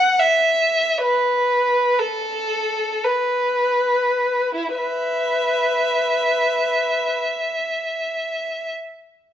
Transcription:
0.00 0.17 F#5 medium
0.20 1.03 E5 soft
1.02 1.96 B4 soft
1.99 3.05 A4 soft
3.04 4.53 B4 soft
4.55 4.78 E4 soft
4.77 7.18 B4 soft
4.77 8.70 E5 soft

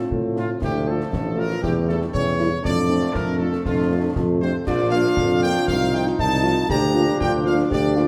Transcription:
0.00 0.58 A3 medium
0.00 0.58 C4 medium
0.00 0.57 F4 loud
0.10 0.53 A2 medium
0.10 concert bass drum medium
0.37 0.46 A3 medium
0.37 0.46 C4 medium
0.37 0.46 F4 medium
0.37 0.48 F4 medium
0.37 snare medium
0.61 1.03 D2 medium
0.61 1.59 F3 medium
0.61 2.46 A3 medium
0.61 1.13 E4 medium
0.61 0.86 G4 loud
0.61 concert bass drum medium
0.61 snare medium
0.61 crash soft
0.87 0.96 A3 medium
0.87 0.96 F4 medium
0.87 1.38 A4 medium
1.01 snare medium
1.11 1.54 A1 medium
1.11 1.37 D4 medium
1.11 concert bass drum medium
1.11 snare medium
1.36 1.46 A3 medium
1.36 1.46 F4 medium
1.36 1.62 F4 medium
1.36 1.64 A#4 loud
1.50 snare medium
1.63 2.05 E2 medium
1.63 2.46 G3 medium
1.63 2.14 E4 medium
1.63 1.74 G4 loud
1.63 concert bass drum medium
1.63 snare medium
1.87 1.98 G3 medium
1.87 1.98 A3 medium
1.87 1.98 E4 medium
1.87 1.99 A4 medium
1.87 snare medium
2.02 snare medium
2.12 2.55 E2 medium
2.12 2.36 C#4 medium
2.12 2.60 C#5 loud
2.12 concert bass drum medium
2.37 2.48 G3 medium
2.37 2.48 A3 medium
2.37 2.49 E4 medium
2.37 2.48 E4 medium
2.37 snare medium
2.63 3.06 F2 medium
2.63 4.63 F3 medium
2.63 4.63 A3 medium
2.63 2.87 D4 medium
2.63 3.11 D5 loud
2.63 concert bass drum medium
2.63 snare medium
2.88 2.99 F3 medium
2.88 2.99 A3 medium
2.88 3.12 C4 medium
2.88 2.99 D4 medium
3.02 snare medium
3.13 3.57 F2 medium
3.13 3.44 D4 medium
3.13 3.40 A#4 loud
3.13 concert bass drum medium
3.13 snare medium
3.39 3.49 F3 medium
3.39 3.49 A3 medium
3.39 3.49 D4 medium
3.39 3.65 A4 loud
3.53 snare medium
3.65 4.08 F2 loud
3.65 4.12 D4 medium
3.65 4.12 F4 medium
3.65 concert bass drum medium
3.65 snare medium
3.91 4.00 F3 medium
3.91 4.00 A3 medium
3.91 4.00 D4 medium
4.16 4.58 F2 medium
4.16 4.40 F4 medium
4.16 concert bass drum medium
4.16 snare medium
4.41 4.51 F3 medium
4.41 4.51 A3 medium
4.41 4.51 D4 medium
4.41 4.53 G4 medium
4.41 4.53 C5 loud
4.67 5.09 A#1 medium
4.67 6.66 F3 medium
4.67 5.65 D4 medium
4.67 6.20 F4 loud
4.67 4.91 D5 medium
4.67 concert bass drum medium
4.67 snare medium
4.67 crash medium
4.91 5.02 F3 medium
4.91 5.02 A#3 medium
4.91 5.01 D4 medium
4.91 5.39 F5 loud
5.05 snare medium
5.17 5.55 F2 medium
5.17 concert bass drum medium
5.17 snare medium
5.42 5.52 F3 medium
5.42 5.52 A#3 medium
5.42 5.52 D4 medium
5.42 5.66 G5 loud
5.55 snare medium
5.68 6.10 C2 medium
5.68 6.71 D#4 loud
5.68 5.92 F5 loud
5.68 concert bass drum medium
5.68 snare medium
5.93 6.02 F3 medium
5.93 6.02 D#4 medium
5.93 6.02 F4 medium
5.93 6.05 G5 loud
5.93 snare medium
6.07 snare medium
6.18 6.61 C2 medium
6.18 6.45 D#4 medium
6.18 6.66 A5 loud
6.18 concert bass drum medium
6.43 6.53 F3 medium
6.43 6.53 D#4 medium
6.43 6.53 F4 medium
6.43 6.69 F4 loud
6.43 snare medium
6.69 7.12 D2 loud
6.69 8.08 F3 medium
6.69 8.08 D4 medium
6.69 7.17 G4 loud
6.69 7.17 A#5 loud
6.69 concert bass drum medium
6.69 snare medium
6.94 7.03 A#3 medium
6.94 7.04 D4 medium
6.94 7.03 F4 medium
7.08 snare medium
7.20 7.63 D2 medium
7.20 7.72 F4 medium
7.20 7.32 G5 loud
7.20 concert bass drum medium
7.20 snare medium
7.45 7.54 A#3 medium
7.45 7.54 D4 medium
7.45 7.54 F4 medium
7.45 7.57 F5 loud
7.59 snare medium
7.70 8.08 D2 loud
7.70 7.97 G4 loud
7.70 8.08 D5 loud
7.70 concert bass drum medium
7.70 snare medium
7.96 8.05 A#3 medium
7.96 8.05 D4 medium
7.96 8.08 F4 medium
7.96 8.05 F4 medium
7.96 snare medium

